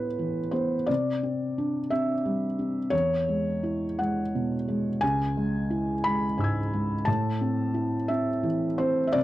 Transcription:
0, 0, Header, 1, 2, 480
1, 0, Start_track
1, 0, Tempo, 683371
1, 622, Time_signature, 6, 3, 24, 8
1, 2055, Tempo, 705882
1, 3015, Tempo, 688863
1, 6429, End_track
2, 0, Start_track
2, 0, Title_t, "Felt piano"
2, 0, Program_c, 0, 0
2, 0, Control_c, 0, 64, 127
2, 0, Note_on_c, 0, 45, 49
2, 0, Note_on_c, 0, 59, 38
2, 0, Note_on_c, 0, 64, 35
2, 0, Note_on_c, 0, 71, 68
2, 0, Note_on_c, 0, 72, 75
2, 133, Note_on_c, 0, 52, 37
2, 282, Note_off_c, 0, 59, 0
2, 360, Note_off_c, 0, 72, 0
2, 360, Note_on_c, 0, 72, 69
2, 371, Note_off_c, 0, 71, 0
2, 372, Note_on_c, 0, 59, 44
2, 522, Note_off_c, 0, 52, 0
2, 593, Note_off_c, 0, 45, 0
2, 608, Note_on_c, 0, 74, 79
2, 613, Note_off_c, 0, 72, 0
2, 618, Note_off_c, 0, 59, 0
2, 625, Note_on_c, 0, 48, 50
2, 635, Control_c, 0, 64, 0
2, 636, Note_off_c, 0, 64, 0
2, 764, Control_c, 0, 64, 127
2, 865, Note_on_c, 0, 60, 37
2, 1110, Note_on_c, 0, 62, 39
2, 1250, Note_off_c, 0, 60, 0
2, 1338, Note_off_c, 0, 74, 0
2, 1338, Note_on_c, 0, 76, 78
2, 1349, Note_on_c, 0, 60, 41
2, 1488, Note_off_c, 0, 62, 0
2, 1583, Note_on_c, 0, 55, 39
2, 1725, Note_off_c, 0, 60, 0
2, 1818, Note_on_c, 0, 60, 38
2, 1960, Note_off_c, 0, 55, 0
2, 2028, Note_off_c, 0, 48, 0
2, 2039, Note_on_c, 0, 73, 97
2, 2051, Note_off_c, 0, 76, 0
2, 2053, Note_on_c, 0, 40, 51
2, 2055, Note_off_c, 0, 60, 0
2, 2065, Control_c, 0, 64, 0
2, 2186, Control_c, 0, 64, 127
2, 2299, Note_on_c, 0, 56, 41
2, 2536, Note_on_c, 0, 64, 38
2, 2686, Note_off_c, 0, 56, 0
2, 2771, Note_off_c, 0, 73, 0
2, 2776, Note_on_c, 0, 78, 65
2, 2785, Note_on_c, 0, 56, 40
2, 2921, Note_off_c, 0, 64, 0
2, 3025, Note_on_c, 0, 47, 44
2, 3162, Note_off_c, 0, 56, 0
2, 3255, Note_on_c, 0, 56, 44
2, 3402, Note_off_c, 0, 47, 0
2, 3464, Note_off_c, 0, 40, 0
2, 3483, Note_on_c, 0, 80, 96
2, 3491, Note_off_c, 0, 78, 0
2, 3493, Note_off_c, 0, 56, 0
2, 3497, Note_on_c, 0, 37, 59
2, 3502, Control_c, 0, 64, 0
2, 3614, Control_c, 0, 64, 127
2, 3736, Note_on_c, 0, 56, 46
2, 3966, Note_on_c, 0, 64, 41
2, 4116, Note_off_c, 0, 56, 0
2, 4200, Note_on_c, 0, 83, 87
2, 4204, Note_off_c, 0, 80, 0
2, 4213, Note_on_c, 0, 56, 42
2, 4349, Note_off_c, 0, 64, 0
2, 4436, Note_on_c, 0, 80, 38
2, 4441, Note_on_c, 0, 44, 42
2, 4455, Note_on_c, 0, 88, 35
2, 4480, Note_on_c, 0, 92, 39
2, 4588, Note_off_c, 0, 56, 0
2, 4684, Note_on_c, 0, 56, 47
2, 4822, Note_off_c, 0, 44, 0
2, 4887, Note_off_c, 0, 80, 0
2, 4894, Note_off_c, 0, 37, 0
2, 4897, Note_off_c, 0, 88, 0
2, 4906, Note_on_c, 0, 81, 85
2, 4909, Note_off_c, 0, 92, 0
2, 4916, Note_off_c, 0, 83, 0
2, 4921, Note_off_c, 0, 56, 0
2, 4921, Note_on_c, 0, 45, 62
2, 4931, Control_c, 0, 64, 0
2, 5064, Control_c, 0, 64, 127
2, 5157, Note_on_c, 0, 60, 46
2, 5387, Note_on_c, 0, 64, 41
2, 5539, Note_off_c, 0, 60, 0
2, 5625, Note_on_c, 0, 76, 78
2, 5629, Note_off_c, 0, 81, 0
2, 5635, Note_on_c, 0, 60, 44
2, 5775, Note_off_c, 0, 64, 0
2, 5868, Note_on_c, 0, 52, 42
2, 5872, Note_off_c, 0, 76, 0
2, 6024, Note_off_c, 0, 60, 0
2, 6111, Note_on_c, 0, 72, 85
2, 6120, Note_on_c, 0, 60, 45
2, 6267, Note_off_c, 0, 52, 0
2, 6315, Note_off_c, 0, 72, 0
2, 6316, Note_on_c, 0, 76, 65
2, 6344, Note_off_c, 0, 45, 0
2, 6351, Note_on_c, 0, 74, 101
2, 6367, Note_on_c, 0, 48, 57
2, 6368, Note_off_c, 0, 76, 0
2, 6370, Note_off_c, 0, 60, 0
2, 6384, Control_c, 0, 64, 0
2, 6429, Note_off_c, 0, 48, 0
2, 6429, Note_off_c, 0, 74, 0
2, 6429, End_track
0, 0, End_of_file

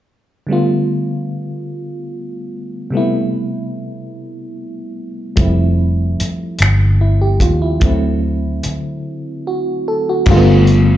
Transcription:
0, 0, Header, 1, 5, 480
1, 0, Start_track
1, 0, Tempo, 816327
1, 280, Time_signature, 6, 3, 24, 8
1, 6451, End_track
2, 0, Start_track
2, 0, Title_t, "FM electric piano"
2, 0, Program_c, 0, 5
2, 274, Note_on_c, 0, 50, 53
2, 285, Note_on_c, 0, 55, 53
2, 294, Note_on_c, 0, 57, 46
2, 302, Note_on_c, 0, 59, 49
2, 309, Note_on_c, 0, 65, 60
2, 376, Control_c, 0, 64, 127
2, 1693, Note_off_c, 0, 50, 0
2, 1699, Note_off_c, 0, 55, 0
2, 1704, Note_off_c, 0, 57, 0
2, 1707, Note_off_c, 0, 59, 0
2, 1708, Note_on_c, 0, 48, 55
2, 1711, Note_off_c, 0, 65, 0
2, 1718, Note_on_c, 0, 55, 49
2, 1726, Control_c, 0, 64, 0
2, 1726, Note_on_c, 0, 57, 49
2, 1735, Note_on_c, 0, 59, 50
2, 1746, Note_on_c, 0, 64, 64
2, 1836, Control_c, 0, 64, 127
2, 3130, Note_off_c, 0, 48, 0
2, 3136, Note_off_c, 0, 55, 0
2, 3140, Note_off_c, 0, 57, 0
2, 3144, Note_off_c, 0, 59, 0
2, 3149, Note_off_c, 0, 64, 0
2, 3151, Note_on_c, 0, 53, 60
2, 3157, Note_on_c, 0, 55, 51
2, 3167, Note_on_c, 0, 57, 56
2, 3168, Control_c, 0, 64, 0
2, 3175, Note_on_c, 0, 60, 52
2, 3182, Note_on_c, 0, 64, 63
2, 3260, Control_c, 0, 64, 127
2, 3877, Note_off_c, 0, 64, 0
2, 4123, Note_on_c, 0, 64, 51
2, 4235, Note_off_c, 0, 64, 0
2, 4242, Note_on_c, 0, 67, 55
2, 4355, Note_off_c, 0, 67, 0
2, 4363, Note_on_c, 0, 65, 60
2, 4476, Note_off_c, 0, 65, 0
2, 4479, Note_on_c, 0, 64, 55
2, 4572, Note_off_c, 0, 53, 0
2, 4575, Note_off_c, 0, 55, 0
2, 4580, Note_off_c, 0, 57, 0
2, 4584, Note_off_c, 0, 60, 0
2, 4588, Note_on_c, 0, 50, 64
2, 4596, Note_on_c, 0, 52, 46
2, 4606, Note_on_c, 0, 57, 57
2, 4607, Control_c, 0, 64, 0
2, 4612, Note_on_c, 0, 60, 58
2, 4613, Note_off_c, 0, 64, 0
2, 4620, Note_on_c, 0, 64, 64
2, 4632, Note_on_c, 0, 54, 55
2, 4636, Note_off_c, 0, 52, 0
2, 4712, Control_c, 0, 64, 127
2, 5570, Note_on_c, 0, 66, 54
2, 5793, Note_off_c, 0, 66, 0
2, 5809, Note_on_c, 0, 69, 56
2, 5919, Note_off_c, 0, 69, 0
2, 5935, Note_on_c, 0, 66, 58
2, 6010, Note_off_c, 0, 50, 0
2, 6020, Note_off_c, 0, 57, 0
2, 6022, Note_off_c, 0, 60, 0
2, 6026, Note_off_c, 0, 64, 0
2, 6032, Note_off_c, 0, 54, 0
2, 6041, Note_on_c, 0, 50, 88
2, 6047, Control_c, 0, 64, 0
2, 6048, Note_on_c, 0, 55, 87
2, 6052, Note_on_c, 0, 57, 84
2, 6055, Note_on_c, 0, 58, 68
2, 6061, Note_on_c, 0, 65, 99
2, 6086, Note_off_c, 0, 58, 0
2, 6095, Note_on_c, 0, 59, 92
2, 6150, Control_c, 0, 64, 127
2, 6156, Note_off_c, 0, 66, 0
2, 6451, Note_off_c, 0, 50, 0
2, 6451, Note_off_c, 0, 55, 0
2, 6451, Note_off_c, 0, 57, 0
2, 6451, Note_off_c, 0, 59, 0
2, 6451, Note_off_c, 0, 65, 0
2, 6451, End_track
3, 0, Start_track
3, 0, Title_t, "Fingered electric bass"
3, 0, Program_c, 1, 33
3, 3166, Note_on_c, 1, 29, 72
3, 3620, Note_off_c, 1, 29, 0
3, 3882, Note_on_c, 1, 31, 82
3, 4338, Note_off_c, 1, 31, 0
3, 4360, Note_on_c, 1, 39, 72
3, 4576, Note_off_c, 1, 39, 0
3, 4600, Note_on_c, 1, 38, 72
3, 5056, Note_off_c, 1, 38, 0
3, 6045, Note_on_c, 1, 31, 86
3, 6451, Note_off_c, 1, 31, 0
3, 6451, End_track
4, 0, Start_track
4, 0, Title_t, "Muted fingered electric bass strokes"
4, 3650, Note_on_c, 9, 29, 37
4, 3709, Note_off_c, 9, 29, 0
4, 5089, Note_on_c, 9, 29, 33
4, 5148, Note_off_c, 9, 29, 0
4, 6451, End_track
5, 0, Start_track
5, 0, Title_t, "Drums"
5, 3156, Note_on_c, 9, 42, 52
5, 3158, Note_on_c, 9, 36, 91
5, 3215, Note_off_c, 9, 42, 0
5, 3217, Note_off_c, 9, 36, 0
5, 3645, Note_on_c, 9, 42, 57
5, 3704, Note_off_c, 9, 42, 0
5, 3873, Note_on_c, 9, 42, 56
5, 3893, Note_on_c, 9, 26, 88
5, 3931, Note_off_c, 9, 42, 0
5, 3952, Note_off_c, 9, 26, 0
5, 4352, Note_on_c, 9, 36, 68
5, 4357, Note_on_c, 9, 42, 54
5, 4410, Note_off_c, 9, 36, 0
5, 4415, Note_off_c, 9, 42, 0
5, 4593, Note_on_c, 9, 42, 53
5, 4596, Note_on_c, 9, 36, 88
5, 4651, Note_off_c, 9, 42, 0
5, 4655, Note_off_c, 9, 36, 0
5, 5077, Note_on_c, 9, 42, 55
5, 5136, Note_off_c, 9, 42, 0
5, 6031, Note_on_c, 9, 49, 100
5, 6037, Note_on_c, 9, 36, 124
5, 6090, Note_off_c, 9, 49, 0
5, 6096, Note_off_c, 9, 36, 0
5, 6274, Note_on_c, 9, 42, 44
5, 6333, Note_off_c, 9, 42, 0
5, 6451, End_track
0, 0, End_of_file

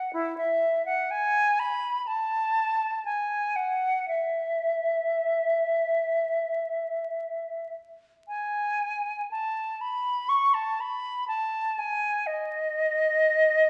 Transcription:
0, 0, Header, 1, 2, 480
1, 0, Start_track
1, 0, Tempo, 980392
1, 53, Time_signature, 4, 2, 24, 8
1, 1491, Tempo, 1050788
1, 3891, Tempo, 1015228
1, 4371, Tempo, 985222
1, 6506, End_track
2, 0, Start_track
2, 0, Title_t, "Flute"
2, 0, Program_c, 0, 73
2, 0, Note_on_c, 0, 78, 78
2, 52, Note_off_c, 0, 78, 0
2, 63, Note_on_c, 0, 64, 81
2, 180, Note_off_c, 0, 64, 0
2, 182, Note_on_c, 0, 76, 73
2, 414, Note_off_c, 0, 76, 0
2, 419, Note_on_c, 0, 78, 69
2, 541, Note_on_c, 0, 80, 81
2, 548, Note_off_c, 0, 78, 0
2, 779, Note_on_c, 0, 83, 85
2, 787, Note_off_c, 0, 80, 0
2, 1012, Note_on_c, 0, 81, 81
2, 1019, Note_off_c, 0, 83, 0
2, 1490, Note_off_c, 0, 81, 0
2, 1493, Note_on_c, 0, 80, 70
2, 1724, Note_on_c, 0, 78, 62
2, 1731, Note_off_c, 0, 80, 0
2, 1961, Note_off_c, 0, 78, 0
2, 1964, Note_on_c, 0, 76, 67
2, 3630, Note_off_c, 0, 76, 0
2, 3881, Note_on_c, 0, 80, 76
2, 4347, Note_off_c, 0, 80, 0
2, 4368, Note_on_c, 0, 81, 73
2, 4611, Note_on_c, 0, 83, 77
2, 4619, Note_off_c, 0, 81, 0
2, 4846, Note_on_c, 0, 85, 73
2, 4853, Note_off_c, 0, 83, 0
2, 4966, Note_on_c, 0, 81, 73
2, 4974, Note_off_c, 0, 85, 0
2, 5095, Note_on_c, 0, 83, 78
2, 5102, Note_off_c, 0, 81, 0
2, 5323, Note_off_c, 0, 83, 0
2, 5326, Note_on_c, 0, 81, 76
2, 5574, Note_on_c, 0, 80, 79
2, 5582, Note_off_c, 0, 81, 0
2, 5808, Note_on_c, 0, 75, 83
2, 5815, Note_off_c, 0, 80, 0
2, 6506, Note_off_c, 0, 75, 0
2, 6506, End_track
0, 0, End_of_file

